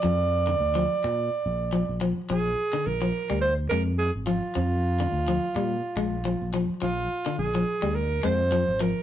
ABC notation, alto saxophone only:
X:1
M:4/4
L:1/8
Q:"Swing 16ths" 1/4=106
K:Bbmix
V:1 name="Alto saxophone"
d6- d z | A2 B2 c B A F- | F6- F z | F2 A2 B c2 B |]